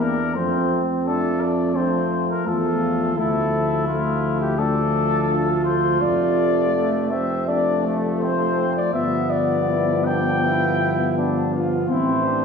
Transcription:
0.00 0.37 E2 soft
0.00 0.32 E3 soft
0.00 0.18 A#3 soft
0.00 0.36 D4 soft
0.00 0.34 A#4 soft
0.35 2.20 F2 soft
0.35 0.80 F3 soft
0.35 0.80 A3 soft
0.35 1.09 C4 soft
0.35 0.80 C5 medium
1.05 1.73 F3 soft
1.05 1.72 A3 soft
1.05 1.78 D4 soft
1.05 1.42 A4 medium
1.41 1.77 D5 medium
1.75 2.45 F3 soft
1.75 2.45 A3 soft
1.75 2.22 C4 soft
1.75 2.29 C5 soft
2.30 2.46 A#4 soft
2.47 3.19 E2 soft
2.47 3.16 F3 soft
2.47 3.16 A3 soft
2.47 3.19 F4 soft
2.47 3.16 A4 medium
3.18 6.01 D2 soft
3.18 3.87 F3 soft
3.18 3.87 A3 soft
3.18 4.58 E4 medium
3.18 3.87 A4 medium
3.88 4.57 F3 soft
3.88 4.57 A3 soft
3.88 4.40 F4 medium
4.41 4.60 G4 soft
4.58 5.99 F3 soft
4.58 5.99 A3 soft
4.58 5.29 D4 medium
4.58 5.64 A4 medium
5.29 6.71 F4 medium
5.64 6.03 C5 medium
6.00 8.62 F1 soft
6.00 7.16 F3 soft
6.00 7.17 A3 soft
6.00 7.10 D5 medium
6.74 7.13 A3 soft
7.11 7.50 C4 soft
7.11 7.46 E5 medium
7.47 8.89 F3 soft
7.47 8.90 A3 soft
7.47 7.87 D4 soft
7.47 7.94 D5 medium
7.85 8.24 A3 soft
8.20 8.69 C4 soft
8.20 8.71 C5 medium
8.76 8.93 D5 medium
8.93 11.85 G1 soft
8.93 11.91 F3 soft
8.93 11.91 B3 soft
8.93 9.70 B3 soft
8.93 9.32 E5 medium
9.30 10.07 D5 medium
9.68 10.09 E4 soft
10.05 10.46 D4 soft
10.05 11.52 G5 medium
10.44 11.17 E4 medium
11.17 11.52 D4 soft
11.54 11.89 F4 soft
11.89 12.45 A1 soft
11.89 12.45 E3 soft
11.89 12.45 C4 soft
11.89 12.26 E4 soft
11.89 12.45 C5 medium
12.26 12.45 D4 soft

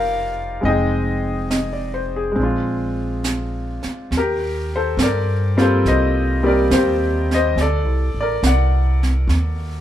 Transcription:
0.00 0.60 F1 medium
0.00 0.61 G3 soft
0.00 0.61 C4 soft
0.00 0.66 D4 medium
0.00 0.64 D#4 medium
0.00 0.66 F4 medium
0.00 0.65 G4 soft
0.00 0.66 A#4 medium
0.00 0.66 C5 medium
0.00 0.66 D5 medium
0.00 0.60 F5 medium
0.61 2.32 F1 medium
0.61 2.30 G#3 soft
0.61 2.34 C4 soft
0.61 2.37 D#4 soft
0.65 1.48 G#4 medium
0.65 1.46 D#5 medium
0.65 2.38 G5 soft
0.65 brush sweep soft
1.50 1.92 D#5 soft
1.50 snare soft
1.50 hi-hat pedal soft
1.73 2.10 D5 soft
1.94 2.20 C5 soft
2.16 2.46 G#4 soft
2.32 4.09 G#3 soft
2.32 4.11 C4 soft
2.36 3.81 A#1 medium
2.36 4.13 D4 soft
2.36 brush sweep soft
2.43 4.15 F4 soft
3.24 snare soft
3.24 hi-hat pedal medium
3.83 muted upright bass stroke soft
3.83 snare soft
4.11 4.95 D#2 medium
4.11 brush sweep soft
4.11 snare soft
4.17 4.71 G4 medium
4.17 4.76 A#4 medium
4.76 4.99 A4 medium
4.76 5.01 C5 medium
4.97 5.82 G2 medium
4.97 snare medium
4.97 hi-hat pedal soft
5.03 5.57 A#4 medium
5.03 5.56 D5 medium
5.57 5.82 G3 medium
5.57 5.82 A#3 medium
5.57 5.82 C4 medium
5.57 5.82 F4 medium
5.57 snare soft
5.61 5.85 A4 medium
5.61 5.87 C5 medium
5.85 6.69 C2 medium
5.85 6.42 D#5 medium
5.85 brush sweep soft
5.85 snare soft
5.89 6.43 C5 medium
6.43 6.68 G3 medium
6.43 6.68 A#3 soft
6.43 6.68 C4 soft
6.43 6.68 G4 medium
6.43 6.73 D5 medium
6.48 6.71 A#4 medium
6.71 7.54 D#2 medium
6.71 7.28 G4 medium
6.71 7.27 C5 medium
6.71 snare medium
6.71 hi-hat pedal medium
7.31 7.57 D#5 medium
7.31 snare soft
7.36 7.58 C5 medium
7.56 7.84 D2 medium
7.56 brush sweep soft
7.56 snare soft
7.61 8.15 A4 medium
7.61 8.19 D5 medium
7.84 8.14 C2 soft
8.14 8.41 A1 medium
8.21 8.44 A#4 medium
8.21 8.43 D5 medium
8.43 9.26 C2 medium
8.43 9.81 F#5 medium
8.43 snare medium
8.43 hi-hat pedal soft
8.49 9.81 D5 medium
9.03 snare soft
9.27 9.81 D#2 medium
9.27 brush sweep soft
9.27 snare soft

